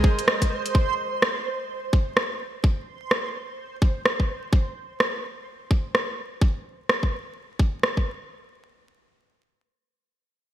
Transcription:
0.00 0.75 G#3 medium
0.00 0.75 G#4 medium
0.00 0.75 A#4 medium
0.00 0.75 C5 medium
0.00 4.54 C5 medium
0.00 0.75 D#5 medium
0.00 kick loud
0.19 closed hi-hat medium
0.28 cross-stick loud
0.42 kick medium
0.42 closed hi-hat soft
0.66 closed hi-hat medium
0.75 kick loud
1.22 cross-stick loud
1.93 kick loud
2.17 cross-stick medium
2.64 kick loud
3.11 cross-stick medium
3.82 kick medium
4.06 cross-stick medium
4.20 kick medium
4.53 kick loud
5.00 cross-stick medium
5.71 kick medium
5.95 cross-stick medium
6.41 kick loud
6.89 cross-stick medium
7.03 kick medium
7.59 kick medium
7.83 cross-stick medium
7.97 kick medium

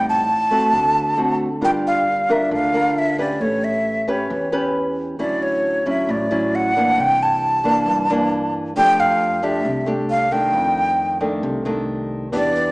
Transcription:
0.00 0.69 A1 medium
0.00 0.71 A2 medium
0.00 0.28 G3 soft
0.00 0.28 C4 soft
0.00 0.28 D#4 medium
0.09 1.38 A5 loud
0.51 1.14 A3 medium
0.51 1.15 C4 medium
0.51 1.15 F#4 medium
0.73 1.58 D2 medium
0.73 1.60 D3 medium
1.17 1.47 A3 soft
1.17 1.48 C4 medium
1.17 1.48 F#4 medium
1.61 2.47 G1 medium
1.61 2.49 G3 medium
1.61 2.06 D4 medium
1.61 2.06 F4 medium
1.61 2.07 A#4 medium
1.61 1.70 G5 loud
1.87 2.33 F5 medium
2.29 2.70 D4 medium
2.29 2.71 F4 medium
2.29 2.71 A#4 medium
2.29 2.53 E5 medium
2.51 3.37 D2 loud
2.51 3.39 D3 soft
2.51 3.00 F5 medium
2.74 3.15 D4 medium
2.74 3.15 F4 medium
2.74 3.15 A#4 medium
2.98 3.20 E5 loud
3.18 4.04 C#4 medium
3.18 4.04 G4 medium
3.18 4.04 B4 medium
3.18 3.43 D5 medium
3.41 4.26 A1 medium
3.41 4.28 A3 medium
3.41 3.66 C#5 medium
3.64 4.10 E5 medium
4.08 4.49 C#4 medium
4.08 4.49 G4 medium
4.08 4.49 B4 medium
4.08 4.75 C#5 medium
4.30 5.15 E2 medium
4.30 5.17 E3 medium
4.52 5.16 C#4 medium
4.52 5.16 G4 medium
4.52 5.16 B4 medium
5.19 6.05 D2 medium
5.19 6.06 D3 medium
5.19 5.82 F#3 medium
5.19 5.83 C#4 medium
5.19 5.83 E4 medium
5.19 5.44 D5 medium
5.43 5.87 C#5 medium
5.86 6.27 F#3 medium
5.86 6.27 C#4 medium
5.86 6.27 E4 medium
5.86 6.12 E5 medium
6.09 6.94 A1 medium
6.09 6.96 A2 medium
6.09 6.57 D5 medium
6.31 6.72 F#3 medium
6.31 6.72 C#4 medium
6.31 6.72 E4 medium
6.55 7.02 F#5 loud
6.76 7.61 E3 medium
6.76 7.61 A#3 medium
6.76 7.62 D4 medium
6.97 7.83 C2 medium
6.97 7.85 C3 medium
6.97 7.24 G5 loud
7.23 8.55 A5 medium
7.64 8.05 E3 medium
7.64 8.05 A#3 medium
7.64 8.06 D4 medium
7.86 8.71 G2 loud
7.86 8.74 G2 medium
8.10 8.73 E3 medium
8.10 8.73 A#3 medium
8.10 8.73 D4 medium
8.76 9.61 F2 medium
8.76 9.63 F3 medium
8.76 9.39 A3 medium
8.76 9.40 D4 medium
8.76 9.40 G4 medium
8.76 9.01 G5 loud
9.00 9.45 F5 loud
9.42 9.84 A3 medium
9.42 9.84 D4 medium
9.42 9.84 G4 medium
9.42 9.88 E5 medium
9.65 10.50 C2 medium
9.65 10.52 C3 medium
9.86 10.28 A3 medium
9.86 10.28 D4 medium
9.86 10.28 G4 medium
10.10 10.34 F5 loud
10.31 11.17 D#3 medium
10.31 11.18 A3 medium
10.31 11.18 D4 medium
10.31 11.21 G5 loud
10.53 11.39 F2 medium
10.53 11.41 F2 medium
11.21 11.62 D#3 medium
11.21 11.62 A3 medium
11.21 11.62 D4 medium
11.43 12.29 C2 loud
11.43 12.30 C3 medium
11.65 12.29 D#3 medium
11.65 12.29 A3 medium
11.65 12.29 D4 medium
12.32 12.72 E2 medium
12.32 12.72 E3 medium
12.32 12.72 B3 medium
12.32 12.72 D4 medium
12.32 12.72 G4 medium
12.32 12.72 D5 loud
12.32 kick medium
12.32 closed hi-hat medium
12.55 closed hi-hat soft

